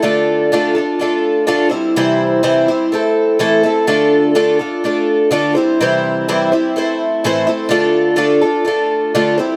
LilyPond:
\new Staff \with { instrumentName = "Twelve-string acoustic guitar" } { \time 4/4 \key d \minor \tempo 4 = 125 <d a d' f' a'>4 <d a d' f' a'>8 <d' f' a'>8 <a d' f' a'>4 <d a d' f' a'>8 <g c' e' c''>8 | <c e g c' e' c''>4 <c e g c' e' c''>8 <g c' e' c''>8 <a c' e' a'>4 <a, e a c' e' a'>8 <a c' e' a'>8 | <d a d' f' a'>4 <d a d' f' a'>8 <d' f' a'>8 <a d' f' a'>4 <d a d' f' a'>8 <g c' e' c''>8 | <c e g c' e' c''>4 <c e g c' e' c''>8 <g c' e' c''>8 <a c' e' c''>4 <a, e a c' e' c''>8 <a c' e' c''>8 |
<d a d' f' a'>4 <d a d' f' a'>8 <d' f' a'>8 <a d' f' a'>4 <d a d' f' a'>8 <g c' e' c''>8 | }